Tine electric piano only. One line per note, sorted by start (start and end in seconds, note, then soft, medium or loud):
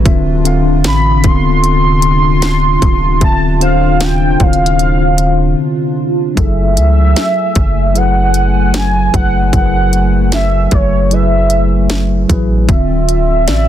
0.04 0.39 D3 medium
0.04 0.40 C4 medium
0.04 0.40 F4 medium
0.04 0.41 E5 loud
0.44 1.13 D3 medium
0.44 1.14 C4 medium
0.44 1.14 F4 medium
0.44 1.15 F5 loud
1.23 2.60 D3 medium
1.23 2.60 C4 medium
1.23 2.61 F4 medium
1.23 1.32 A4 medium
1.32 2.65 B3 medium
3.20 3.55 D3 medium
3.20 3.56 C4 medium
3.20 3.56 F4 medium
3.20 3.57 E5 medium
3.59 4.29 D3 medium
3.59 4.30 C4 medium
3.59 4.30 F4 medium
3.59 4.31 F5 medium
4.38 5.76 D3 medium
4.38 5.76 C4 medium
4.38 4.48 E4 medium
4.38 5.77 C5 medium
4.47 5.80 F4 medium
6.35 7.73 F#3 medium
6.35 7.73 E4 medium
6.35 7.74 G#4 medium
6.35 7.74 A4 medium
7.94 8.98 F#3 medium
7.94 8.98 E4 medium
7.94 8.99 G#4 medium
7.94 8.99 B4 medium
9.12 9.47 F#3 medium
9.12 9.48 E4 medium
9.12 9.48 G#4 medium
9.12 9.49 B4 medium
9.52 10.89 F#3 medium
9.52 10.90 E4 medium
9.52 10.90 G#4 medium
9.52 9.62 A#4 medium
9.62 10.94 B4 medium
11.11 12.14 F#3 medium
11.11 12.15 E4 medium
11.11 12.15 G#4 medium
11.11 12.16 B4 medium
12.28 12.63 F#3 medium
12.28 12.64 E4 medium
12.28 12.64 G#4 medium
12.28 12.65 B4 medium
12.68 13.68 D3 medium
12.68 13.68 C4 medium
12.68 13.68 F4 medium
12.68 13.68 E5 medium